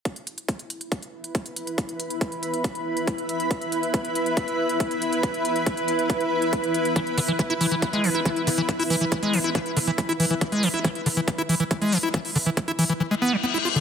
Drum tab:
HH |xxxxxxxxxx-xxxxx|xxxxxxxxxx-xxxxx|xxxxxxxxxx-xxxxx|xxxxxxxxxx-xxxxx|
BD |o---o---o---o---|o---o---o---o---|o---o---o---o---|o---o---o---o---|

HH |xxoxxxoxxxoxxxox|xooxxxoxxxoxxxox|xxoxxxoxxxoxxxox|xooxxxox--------|
BD |o---o---o---o---|o---o---o---o---|o---o---o---o---|o---o-----------|